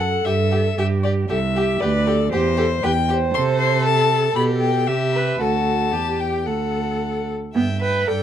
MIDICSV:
0, 0, Header, 1, 5, 480
1, 0, Start_track
1, 0, Tempo, 514139
1, 237, Time_signature, 2, 2, 24, 8
1, 4555, Tempo, 532860
1, 7572, End_track
2, 0, Start_track
2, 0, Title_t, "Violin"
2, 0, Program_c, 0, 40
2, 0, Note_on_c, 0, 78, 92
2, 237, Note_on_c, 0, 76, 80
2, 251, Note_off_c, 0, 78, 0
2, 721, Note_off_c, 0, 76, 0
2, 727, Note_on_c, 0, 76, 82
2, 801, Note_off_c, 0, 76, 0
2, 965, Note_on_c, 0, 74, 69
2, 1040, Note_off_c, 0, 74, 0
2, 1213, Note_on_c, 0, 76, 81
2, 1685, Note_on_c, 0, 74, 92
2, 1699, Note_off_c, 0, 76, 0
2, 2162, Note_off_c, 0, 74, 0
2, 2167, Note_on_c, 0, 72, 91
2, 2649, Note_on_c, 0, 79, 93
2, 2663, Note_off_c, 0, 72, 0
2, 2888, Note_off_c, 0, 79, 0
2, 3123, Note_on_c, 0, 84, 92
2, 3198, Note_off_c, 0, 84, 0
2, 3356, Note_on_c, 0, 84, 94
2, 3587, Note_off_c, 0, 84, 0
2, 3592, Note_on_c, 0, 81, 101
2, 4062, Note_off_c, 0, 81, 0
2, 4067, Note_on_c, 0, 83, 87
2, 4142, Note_off_c, 0, 83, 0
2, 4310, Note_on_c, 0, 79, 79
2, 4554, Note_on_c, 0, 76, 85
2, 4567, Note_off_c, 0, 79, 0
2, 5023, Note_off_c, 0, 76, 0
2, 5028, Note_on_c, 0, 81, 80
2, 5747, Note_on_c, 0, 79, 62
2, 5760, Note_off_c, 0, 81, 0
2, 5982, Note_on_c, 0, 78, 53
2, 5995, Note_off_c, 0, 79, 0
2, 6713, Note_off_c, 0, 78, 0
2, 6956, Note_on_c, 0, 76, 53
2, 7439, Note_on_c, 0, 74, 47
2, 7452, Note_off_c, 0, 76, 0
2, 7572, Note_off_c, 0, 74, 0
2, 7572, End_track
3, 0, Start_track
3, 0, Title_t, "Viola"
3, 0, Program_c, 1, 41
3, 0, Note_on_c, 1, 69, 67
3, 730, Note_on_c, 1, 67, 56
3, 744, Note_off_c, 1, 69, 0
3, 1204, Note_off_c, 1, 67, 0
3, 1209, Note_on_c, 1, 69, 66
3, 1284, Note_off_c, 1, 69, 0
3, 1447, Note_on_c, 1, 67, 67
3, 1687, Note_on_c, 1, 71, 61
3, 1701, Note_off_c, 1, 67, 0
3, 1929, Note_on_c, 1, 69, 64
3, 1943, Note_off_c, 1, 71, 0
3, 2162, Note_off_c, 1, 69, 0
3, 2167, Note_on_c, 1, 67, 68
3, 2401, Note_off_c, 1, 67, 0
3, 2406, Note_on_c, 1, 69, 77
3, 2481, Note_off_c, 1, 69, 0
3, 2642, Note_on_c, 1, 71, 63
3, 2717, Note_off_c, 1, 71, 0
3, 2882, Note_on_c, 1, 72, 76
3, 3591, Note_on_c, 1, 69, 68
3, 3605, Note_off_c, 1, 72, 0
3, 4540, Note_off_c, 1, 69, 0
3, 4546, Note_on_c, 1, 67, 53
3, 4618, Note_off_c, 1, 67, 0
3, 4787, Note_on_c, 1, 71, 64
3, 5029, Note_on_c, 1, 69, 56
3, 5042, Note_off_c, 1, 71, 0
3, 5499, Note_on_c, 1, 67, 49
3, 5512, Note_off_c, 1, 69, 0
3, 5978, Note_off_c, 1, 67, 0
3, 5984, Note_on_c, 1, 69, 48
3, 6700, Note_off_c, 1, 69, 0
3, 6959, Note_on_c, 1, 59, 63
3, 7031, Note_off_c, 1, 59, 0
3, 7200, Note_on_c, 1, 71, 75
3, 7433, Note_on_c, 1, 69, 64
3, 7447, Note_off_c, 1, 71, 0
3, 7572, Note_off_c, 1, 69, 0
3, 7572, End_track
4, 0, Start_track
4, 0, Title_t, "Violin"
4, 0, Program_c, 2, 40
4, 240, Note_on_c, 2, 67, 54
4, 315, Note_off_c, 2, 67, 0
4, 482, Note_on_c, 2, 67, 54
4, 557, Note_off_c, 2, 67, 0
4, 734, Note_on_c, 2, 67, 60
4, 809, Note_off_c, 2, 67, 0
4, 980, Note_on_c, 2, 67, 53
4, 1055, Note_off_c, 2, 67, 0
4, 1210, Note_on_c, 2, 67, 57
4, 1285, Note_off_c, 2, 67, 0
4, 1459, Note_on_c, 2, 67, 58
4, 1534, Note_off_c, 2, 67, 0
4, 1700, Note_on_c, 2, 67, 62
4, 1775, Note_off_c, 2, 67, 0
4, 1937, Note_on_c, 2, 67, 57
4, 2012, Note_off_c, 2, 67, 0
4, 2173, Note_on_c, 2, 67, 61
4, 2248, Note_off_c, 2, 67, 0
4, 2401, Note_on_c, 2, 67, 67
4, 2476, Note_off_c, 2, 67, 0
4, 2648, Note_on_c, 2, 67, 67
4, 2722, Note_off_c, 2, 67, 0
4, 2883, Note_on_c, 2, 67, 62
4, 2958, Note_off_c, 2, 67, 0
4, 3116, Note_on_c, 2, 69, 66
4, 4075, Note_on_c, 2, 67, 59
4, 4089, Note_off_c, 2, 69, 0
4, 4551, Note_off_c, 2, 67, 0
4, 4556, Note_on_c, 2, 67, 63
4, 5022, Note_off_c, 2, 67, 0
4, 5026, Note_on_c, 2, 66, 54
4, 5500, Note_on_c, 2, 67, 53
4, 5513, Note_off_c, 2, 66, 0
4, 5986, Note_on_c, 2, 69, 43
4, 6000, Note_off_c, 2, 67, 0
4, 6773, Note_off_c, 2, 69, 0
4, 6961, Note_on_c, 2, 79, 45
4, 7196, Note_off_c, 2, 79, 0
4, 7205, Note_on_c, 2, 79, 46
4, 7433, Note_off_c, 2, 79, 0
4, 7439, Note_on_c, 2, 79, 47
4, 7572, Note_off_c, 2, 79, 0
4, 7572, End_track
5, 0, Start_track
5, 0, Title_t, "Cello"
5, 0, Program_c, 3, 42
5, 0, Note_on_c, 3, 42, 54
5, 178, Note_off_c, 3, 42, 0
5, 234, Note_on_c, 3, 43, 65
5, 668, Note_off_c, 3, 43, 0
5, 720, Note_on_c, 3, 43, 68
5, 1153, Note_off_c, 3, 43, 0
5, 1211, Note_on_c, 3, 36, 74
5, 1635, Note_off_c, 3, 36, 0
5, 1693, Note_on_c, 3, 38, 73
5, 2113, Note_off_c, 3, 38, 0
5, 2173, Note_on_c, 3, 40, 80
5, 2593, Note_off_c, 3, 40, 0
5, 2650, Note_on_c, 3, 40, 66
5, 3070, Note_off_c, 3, 40, 0
5, 3123, Note_on_c, 3, 48, 75
5, 4037, Note_off_c, 3, 48, 0
5, 4073, Note_on_c, 3, 47, 66
5, 4554, Note_on_c, 3, 48, 61
5, 4568, Note_off_c, 3, 47, 0
5, 5020, Note_off_c, 3, 48, 0
5, 5025, Note_on_c, 3, 38, 57
5, 5498, Note_on_c, 3, 40, 51
5, 5512, Note_off_c, 3, 38, 0
5, 5985, Note_on_c, 3, 38, 48
5, 5998, Note_off_c, 3, 40, 0
5, 6772, Note_off_c, 3, 38, 0
5, 6962, Note_on_c, 3, 43, 57
5, 7383, Note_off_c, 3, 43, 0
5, 7438, Note_on_c, 3, 43, 49
5, 7572, Note_off_c, 3, 43, 0
5, 7572, End_track
0, 0, End_of_file